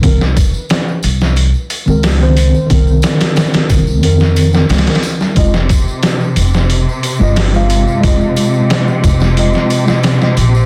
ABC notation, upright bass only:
X:1
M:4/4
L:1/16
Q:1/4=90
K:Fm
V:1 name="Upright bass" clef=bass
C,,2 z4 C,,3 z2 D,,4 z | C,,2 z4 C,,2 F,,4 D,, z3 | F,,,2 z4 F,,,3 z2 G,,,4 z | F,,,2 z4 F,,,3 z4 z B,,,2 |]